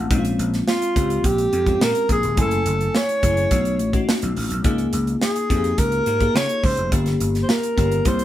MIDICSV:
0, 0, Header, 1, 5, 480
1, 0, Start_track
1, 0, Tempo, 568020
1, 86, Time_signature, 4, 2, 24, 8
1, 6967, End_track
2, 0, Start_track
2, 0, Title_t, "Alto saxophone"
2, 0, Program_c, 0, 65
2, 583, Note_on_c, 0, 65, 77
2, 1062, Note_on_c, 0, 67, 74
2, 1075, Note_off_c, 0, 65, 0
2, 1547, Note_on_c, 0, 70, 88
2, 1559, Note_off_c, 0, 67, 0
2, 1776, Note_off_c, 0, 70, 0
2, 1791, Note_on_c, 0, 68, 80
2, 2003, Note_off_c, 0, 68, 0
2, 2034, Note_on_c, 0, 69, 93
2, 2508, Note_on_c, 0, 73, 100
2, 2521, Note_off_c, 0, 69, 0
2, 3457, Note_off_c, 0, 73, 0
2, 4424, Note_on_c, 0, 68, 74
2, 4891, Note_on_c, 0, 70, 84
2, 4904, Note_off_c, 0, 68, 0
2, 5375, Note_on_c, 0, 73, 96
2, 5387, Note_off_c, 0, 70, 0
2, 5620, Note_on_c, 0, 72, 87
2, 5632, Note_off_c, 0, 73, 0
2, 5853, Note_off_c, 0, 72, 0
2, 6278, Note_on_c, 0, 72, 52
2, 6337, Note_on_c, 0, 70, 73
2, 6350, Note_off_c, 0, 72, 0
2, 6821, Note_on_c, 0, 72, 77
2, 6834, Note_off_c, 0, 70, 0
2, 6967, Note_off_c, 0, 72, 0
2, 6967, End_track
3, 0, Start_track
3, 0, Title_t, "FM electric piano"
3, 0, Program_c, 1, 5
3, 0, Control_c, 1, 64, 127
3, 0, Note_on_c, 1, 56, 67
3, 0, Note_on_c, 1, 57, 75
3, 0, Note_on_c, 1, 60, 75
3, 0, Note_on_c, 1, 63, 62
3, 0, Note_on_c, 1, 65, 56
3, 0, Note_on_c, 1, 66, 89
3, 0, Note_on_c, 1, 77, 67
3, 0, Note_on_c, 1, 78, 65
3, 0, Note_on_c, 1, 81, 58
3, 91, Note_off_c, 1, 56, 0
3, 91, Note_on_c, 1, 56, 81
3, 94, Note_off_c, 1, 60, 0
3, 94, Note_on_c, 1, 60, 76
3, 95, Note_off_c, 1, 77, 0
3, 96, Control_c, 1, 64, 0
3, 97, Note_off_c, 1, 57, 0
3, 97, Note_off_c, 1, 65, 0
3, 97, Note_on_c, 1, 61, 71
3, 99, Note_off_c, 1, 63, 0
3, 99, Note_off_c, 1, 78, 0
3, 100, Note_on_c, 1, 63, 73
3, 101, Note_off_c, 1, 66, 0
3, 101, Note_off_c, 1, 81, 0
3, 148, Note_off_c, 1, 63, 0
3, 155, Note_on_c, 1, 65, 92
3, 247, Control_c, 1, 64, 127
3, 544, Note_off_c, 1, 56, 0
3, 546, Note_off_c, 1, 60, 0
3, 548, Note_off_c, 1, 61, 0
3, 576, Note_off_c, 1, 65, 0
3, 808, Note_on_c, 1, 56, 63
3, 811, Note_on_c, 1, 60, 56
3, 818, Note_on_c, 1, 61, 61
3, 820, Note_on_c, 1, 67, 74
3, 1187, Note_off_c, 1, 56, 0
3, 1189, Note_off_c, 1, 60, 0
3, 1192, Note_off_c, 1, 61, 0
3, 1193, Note_off_c, 1, 67, 0
3, 1409, Note_on_c, 1, 56, 59
3, 1412, Note_on_c, 1, 60, 54
3, 1415, Note_on_c, 1, 61, 58
3, 1419, Note_on_c, 1, 65, 70
3, 1788, Note_off_c, 1, 56, 0
3, 1789, Note_off_c, 1, 60, 0
3, 1790, Note_off_c, 1, 61, 0
3, 1792, Note_off_c, 1, 65, 0
3, 2004, Note_on_c, 1, 57, 75
3, 2007, Note_on_c, 1, 61, 60
3, 2013, Note_on_c, 1, 64, 61
3, 2014, Note_on_c, 1, 80, 70
3, 2015, Control_c, 1, 64, 0
3, 2185, Control_c, 1, 64, 127
3, 2461, Note_off_c, 1, 57, 0
3, 2463, Note_off_c, 1, 61, 0
3, 2465, Note_off_c, 1, 64, 0
3, 2466, Note_off_c, 1, 80, 0
3, 2723, Note_on_c, 1, 57, 64
3, 2726, Note_on_c, 1, 61, 58
3, 2729, Note_on_c, 1, 64, 61
3, 2731, Note_on_c, 1, 68, 77
3, 2952, Note_off_c, 1, 57, 0
3, 2958, Note_off_c, 1, 61, 0
3, 2962, Note_on_c, 1, 57, 64
3, 2968, Note_off_c, 1, 64, 0
3, 2968, Note_on_c, 1, 61, 62
3, 2969, Note_off_c, 1, 68, 0
3, 2970, Note_on_c, 1, 63, 54
3, 2974, Note_on_c, 1, 66, 65
3, 2976, Control_c, 1, 64, 0
3, 3130, Control_c, 1, 64, 127
3, 3252, Note_off_c, 1, 57, 0
3, 3255, Note_off_c, 1, 61, 0
3, 3256, Note_off_c, 1, 63, 0
3, 3258, Note_off_c, 1, 66, 0
3, 3321, Note_on_c, 1, 57, 71
3, 3326, Note_on_c, 1, 61, 73
3, 3327, Note_on_c, 1, 63, 69
3, 3330, Note_on_c, 1, 66, 78
3, 3703, Note_off_c, 1, 57, 0
3, 3706, Note_off_c, 1, 61, 0
3, 3707, Note_off_c, 1, 63, 0
3, 3708, Note_off_c, 1, 66, 0
3, 3923, Note_on_c, 1, 58, 84
3, 3928, Note_on_c, 1, 63, 70
3, 3931, Note_on_c, 1, 65, 78
3, 3933, Note_on_c, 1, 68, 82
3, 3938, Control_c, 1, 64, 0
3, 4101, Control_c, 1, 64, 127
3, 4381, Note_off_c, 1, 58, 0
3, 4383, Note_off_c, 1, 63, 0
3, 4385, Note_off_c, 1, 65, 0
3, 4385, Note_off_c, 1, 68, 0
3, 4644, Note_on_c, 1, 58, 69
3, 4647, Note_on_c, 1, 63, 58
3, 4651, Note_on_c, 1, 65, 58
3, 4654, Note_on_c, 1, 67, 54
3, 4706, Note_off_c, 1, 67, 0
3, 4710, Note_on_c, 1, 68, 68
3, 5025, Note_off_c, 1, 58, 0
3, 5027, Note_off_c, 1, 63, 0
3, 5029, Note_off_c, 1, 65, 0
3, 5058, Note_off_c, 1, 68, 0
3, 5244, Note_on_c, 1, 58, 69
3, 5247, Note_on_c, 1, 63, 62
3, 5250, Note_on_c, 1, 65, 58
3, 5253, Note_on_c, 1, 68, 74
3, 5625, Note_off_c, 1, 58, 0
3, 5627, Note_off_c, 1, 63, 0
3, 5628, Note_off_c, 1, 65, 0
3, 5630, Note_off_c, 1, 68, 0
3, 5848, Note_on_c, 1, 58, 73
3, 5849, Note_on_c, 1, 61, 64
3, 5853, Note_on_c, 1, 65, 63
3, 5857, Note_on_c, 1, 67, 76
3, 5858, Control_c, 1, 64, 0
3, 6014, Control_c, 1, 64, 127
3, 6303, Note_off_c, 1, 58, 0
3, 6304, Note_off_c, 1, 61, 0
3, 6306, Note_off_c, 1, 65, 0
3, 6308, Note_off_c, 1, 67, 0
3, 6562, Note_on_c, 1, 58, 66
3, 6567, Note_on_c, 1, 61, 64
3, 6571, Note_on_c, 1, 65, 58
3, 6574, Note_on_c, 1, 67, 73
3, 6793, Note_off_c, 1, 58, 0
3, 6796, Note_off_c, 1, 61, 0
3, 6803, Note_off_c, 1, 67, 0
3, 6803, Note_on_c, 1, 58, 64
3, 6806, Note_on_c, 1, 61, 55
3, 6809, Note_off_c, 1, 65, 0
3, 6810, Note_on_c, 1, 64, 61
3, 6813, Note_on_c, 1, 67, 65
3, 6817, Control_c, 1, 64, 0
3, 6941, Control_c, 1, 64, 127
3, 6967, Note_off_c, 1, 58, 0
3, 6967, Note_off_c, 1, 61, 0
3, 6967, Note_off_c, 1, 64, 0
3, 6967, Note_off_c, 1, 67, 0
3, 6967, End_track
4, 0, Start_track
4, 0, Title_t, "Slap bass"
4, 0, Program_c, 2, 36
4, 90, Note_on_c, 2, 34, 91
4, 270, Note_off_c, 2, 34, 0
4, 326, Note_on_c, 2, 34, 100
4, 508, Note_off_c, 2, 34, 0
4, 813, Note_on_c, 2, 37, 84
4, 992, Note_off_c, 2, 37, 0
4, 1050, Note_on_c, 2, 34, 90
4, 1230, Note_off_c, 2, 34, 0
4, 1291, Note_on_c, 2, 41, 74
4, 1470, Note_off_c, 2, 41, 0
4, 1530, Note_on_c, 2, 46, 91
4, 1620, Note_off_c, 2, 46, 0
4, 1769, Note_on_c, 2, 34, 76
4, 1859, Note_off_c, 2, 34, 0
4, 1890, Note_on_c, 2, 27, 74
4, 1979, Note_off_c, 2, 27, 0
4, 2007, Note_on_c, 2, 30, 91
4, 2188, Note_off_c, 2, 30, 0
4, 2246, Note_on_c, 2, 30, 89
4, 2428, Note_off_c, 2, 30, 0
4, 2727, Note_on_c, 2, 30, 80
4, 2908, Note_off_c, 2, 30, 0
4, 2966, Note_on_c, 2, 35, 81
4, 3208, Note_off_c, 2, 35, 0
4, 3208, Note_on_c, 2, 33, 77
4, 3389, Note_off_c, 2, 33, 0
4, 3572, Note_on_c, 2, 35, 79
4, 3661, Note_off_c, 2, 35, 0
4, 3689, Note_on_c, 2, 33, 75
4, 3779, Note_off_c, 2, 33, 0
4, 3811, Note_on_c, 2, 35, 62
4, 3900, Note_off_c, 2, 35, 0
4, 3927, Note_on_c, 2, 37, 87
4, 4109, Note_off_c, 2, 37, 0
4, 4166, Note_on_c, 2, 37, 93
4, 4348, Note_off_c, 2, 37, 0
4, 4649, Note_on_c, 2, 41, 88
4, 4829, Note_off_c, 2, 41, 0
4, 4887, Note_on_c, 2, 37, 89
4, 5069, Note_off_c, 2, 37, 0
4, 5125, Note_on_c, 2, 44, 72
4, 5307, Note_off_c, 2, 44, 0
4, 5365, Note_on_c, 2, 49, 99
4, 5456, Note_off_c, 2, 49, 0
4, 5607, Note_on_c, 2, 37, 79
4, 5698, Note_off_c, 2, 37, 0
4, 5728, Note_on_c, 2, 29, 77
4, 5818, Note_off_c, 2, 29, 0
4, 5848, Note_on_c, 2, 31, 84
4, 6029, Note_off_c, 2, 31, 0
4, 6086, Note_on_c, 2, 31, 89
4, 6268, Note_off_c, 2, 31, 0
4, 6570, Note_on_c, 2, 31, 91
4, 6750, Note_off_c, 2, 31, 0
4, 6807, Note_on_c, 2, 36, 95
4, 6967, Note_off_c, 2, 36, 0
4, 6967, End_track
5, 0, Start_track
5, 0, Title_t, "Drums"
5, 90, Note_on_c, 9, 36, 98
5, 90, Note_on_c, 9, 42, 84
5, 174, Note_off_c, 9, 36, 0
5, 174, Note_off_c, 9, 42, 0
5, 208, Note_on_c, 9, 42, 46
5, 293, Note_off_c, 9, 42, 0
5, 333, Note_on_c, 9, 42, 75
5, 418, Note_off_c, 9, 42, 0
5, 453, Note_on_c, 9, 42, 36
5, 454, Note_on_c, 9, 38, 27
5, 538, Note_off_c, 9, 38, 0
5, 538, Note_off_c, 9, 42, 0
5, 571, Note_on_c, 9, 38, 89
5, 655, Note_off_c, 9, 38, 0
5, 691, Note_on_c, 9, 42, 55
5, 776, Note_off_c, 9, 42, 0
5, 812, Note_on_c, 9, 36, 80
5, 814, Note_on_c, 9, 42, 65
5, 896, Note_off_c, 9, 36, 0
5, 899, Note_off_c, 9, 42, 0
5, 931, Note_on_c, 9, 42, 41
5, 1015, Note_off_c, 9, 42, 0
5, 1049, Note_on_c, 9, 42, 80
5, 1050, Note_on_c, 9, 36, 81
5, 1133, Note_off_c, 9, 42, 0
5, 1134, Note_off_c, 9, 36, 0
5, 1169, Note_on_c, 9, 42, 43
5, 1254, Note_off_c, 9, 42, 0
5, 1290, Note_on_c, 9, 42, 55
5, 1374, Note_off_c, 9, 42, 0
5, 1407, Note_on_c, 9, 36, 71
5, 1409, Note_on_c, 9, 42, 42
5, 1491, Note_off_c, 9, 36, 0
5, 1493, Note_off_c, 9, 42, 0
5, 1533, Note_on_c, 9, 38, 109
5, 1617, Note_off_c, 9, 38, 0
5, 1647, Note_on_c, 9, 42, 57
5, 1732, Note_off_c, 9, 42, 0
5, 1768, Note_on_c, 9, 36, 76
5, 1768, Note_on_c, 9, 42, 72
5, 1852, Note_off_c, 9, 36, 0
5, 1852, Note_off_c, 9, 42, 0
5, 1885, Note_on_c, 9, 42, 46
5, 1969, Note_off_c, 9, 42, 0
5, 2005, Note_on_c, 9, 42, 78
5, 2007, Note_on_c, 9, 36, 97
5, 2089, Note_off_c, 9, 42, 0
5, 2092, Note_off_c, 9, 36, 0
5, 2122, Note_on_c, 9, 42, 42
5, 2207, Note_off_c, 9, 42, 0
5, 2246, Note_on_c, 9, 42, 75
5, 2331, Note_off_c, 9, 42, 0
5, 2371, Note_on_c, 9, 42, 40
5, 2456, Note_off_c, 9, 42, 0
5, 2489, Note_on_c, 9, 38, 89
5, 2574, Note_off_c, 9, 38, 0
5, 2610, Note_on_c, 9, 42, 46
5, 2694, Note_off_c, 9, 42, 0
5, 2729, Note_on_c, 9, 36, 81
5, 2731, Note_on_c, 9, 42, 70
5, 2814, Note_off_c, 9, 36, 0
5, 2815, Note_off_c, 9, 42, 0
5, 2848, Note_on_c, 9, 42, 44
5, 2933, Note_off_c, 9, 42, 0
5, 2965, Note_on_c, 9, 42, 81
5, 2967, Note_on_c, 9, 36, 80
5, 3049, Note_off_c, 9, 42, 0
5, 3051, Note_off_c, 9, 36, 0
5, 3086, Note_on_c, 9, 42, 42
5, 3171, Note_off_c, 9, 42, 0
5, 3205, Note_on_c, 9, 42, 54
5, 3290, Note_off_c, 9, 42, 0
5, 3324, Note_on_c, 9, 36, 75
5, 3326, Note_on_c, 9, 42, 39
5, 3409, Note_off_c, 9, 36, 0
5, 3410, Note_off_c, 9, 42, 0
5, 3453, Note_on_c, 9, 38, 103
5, 3538, Note_off_c, 9, 38, 0
5, 3566, Note_on_c, 9, 42, 53
5, 3650, Note_off_c, 9, 42, 0
5, 3689, Note_on_c, 9, 46, 72
5, 3773, Note_off_c, 9, 46, 0
5, 3805, Note_on_c, 9, 42, 52
5, 3890, Note_off_c, 9, 42, 0
5, 3924, Note_on_c, 9, 42, 85
5, 3926, Note_on_c, 9, 36, 98
5, 4008, Note_off_c, 9, 42, 0
5, 4010, Note_off_c, 9, 36, 0
5, 4041, Note_on_c, 9, 42, 41
5, 4126, Note_off_c, 9, 42, 0
5, 4164, Note_on_c, 9, 42, 82
5, 4248, Note_off_c, 9, 42, 0
5, 4286, Note_on_c, 9, 42, 39
5, 4371, Note_off_c, 9, 42, 0
5, 4407, Note_on_c, 9, 38, 90
5, 4492, Note_off_c, 9, 38, 0
5, 4527, Note_on_c, 9, 42, 49
5, 4612, Note_off_c, 9, 42, 0
5, 4648, Note_on_c, 9, 36, 80
5, 4651, Note_on_c, 9, 42, 66
5, 4733, Note_off_c, 9, 36, 0
5, 4735, Note_off_c, 9, 42, 0
5, 4766, Note_on_c, 9, 42, 42
5, 4851, Note_off_c, 9, 42, 0
5, 4884, Note_on_c, 9, 42, 81
5, 4886, Note_on_c, 9, 36, 77
5, 4969, Note_off_c, 9, 42, 0
5, 4971, Note_off_c, 9, 36, 0
5, 5001, Note_on_c, 9, 42, 42
5, 5086, Note_off_c, 9, 42, 0
5, 5122, Note_on_c, 9, 42, 56
5, 5207, Note_off_c, 9, 42, 0
5, 5243, Note_on_c, 9, 36, 75
5, 5243, Note_on_c, 9, 42, 40
5, 5328, Note_off_c, 9, 36, 0
5, 5328, Note_off_c, 9, 42, 0
5, 5372, Note_on_c, 9, 38, 111
5, 5456, Note_off_c, 9, 38, 0
5, 5486, Note_on_c, 9, 42, 47
5, 5571, Note_off_c, 9, 42, 0
5, 5607, Note_on_c, 9, 36, 89
5, 5609, Note_on_c, 9, 46, 72
5, 5692, Note_off_c, 9, 36, 0
5, 5694, Note_off_c, 9, 46, 0
5, 5724, Note_on_c, 9, 42, 52
5, 5809, Note_off_c, 9, 42, 0
5, 5848, Note_on_c, 9, 36, 92
5, 5848, Note_on_c, 9, 42, 91
5, 5932, Note_off_c, 9, 36, 0
5, 5933, Note_off_c, 9, 42, 0
5, 5965, Note_on_c, 9, 42, 44
5, 5971, Note_on_c, 9, 38, 33
5, 6049, Note_off_c, 9, 42, 0
5, 6056, Note_off_c, 9, 38, 0
5, 6088, Note_on_c, 9, 42, 69
5, 6173, Note_off_c, 9, 42, 0
5, 6211, Note_on_c, 9, 42, 39
5, 6212, Note_on_c, 9, 38, 26
5, 6296, Note_off_c, 9, 38, 0
5, 6296, Note_off_c, 9, 42, 0
5, 6328, Note_on_c, 9, 38, 96
5, 6413, Note_off_c, 9, 38, 0
5, 6450, Note_on_c, 9, 42, 54
5, 6534, Note_off_c, 9, 42, 0
5, 6571, Note_on_c, 9, 36, 78
5, 6574, Note_on_c, 9, 42, 73
5, 6655, Note_off_c, 9, 36, 0
5, 6658, Note_off_c, 9, 42, 0
5, 6689, Note_on_c, 9, 42, 43
5, 6773, Note_off_c, 9, 42, 0
5, 6804, Note_on_c, 9, 42, 83
5, 6807, Note_on_c, 9, 36, 76
5, 6888, Note_off_c, 9, 42, 0
5, 6892, Note_off_c, 9, 36, 0
5, 6921, Note_on_c, 9, 42, 40
5, 6967, Note_off_c, 9, 42, 0
5, 6967, End_track
0, 0, End_of_file